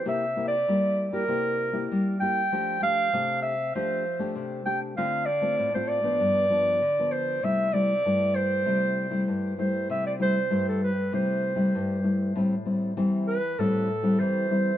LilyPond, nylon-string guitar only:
\new Staff \with { instrumentName = "Nylon-string guitar" } { \time 4/4 \key c \major \tempo 4 = 98 << { <bes e' g'>16 r16 <bes e' g'>16 r16 <bes e' g'>8. <bes e' g'>16 <bes e' g'>8. <bes e' g'>8. <bes e' g'>16 r16 | <a d' g'>8 <a d' g'>8 <a d' g'>8. r16 <a d' g'>8 r16 <a d' g'>8. <a d' g'>8 | <a c' f'>8 r16 <a c' f'>8 <a c' f'>8 <f b d'>8. <f b d'>8 r16 <f b d'>8. | <g a e'>8 <g a e'>16 r16 <g a e'>4 <g a e'>8. <g a e'>8. <g a e'>8~ |
<g a e'>8 <g a e'>16 r16 <g a e'>8. r16 <g a e'>8. <g a e'>8. <g a e'>8 | <g c' e'>16 r16 <g c' e'>8 <g c' e'>8. r16 <g c' e'>8 r16 <g c' e'>8. <g c' e'>16 r16 | } \\ { c4 g4 c4 g4 | f4 c4 f4 c4 | d4 a,4 g,4 d4 | c4 g,4 c4 g,4 |
c4 g,4 c4 g,4 | a,4 e4 a,4 e4 | } >> }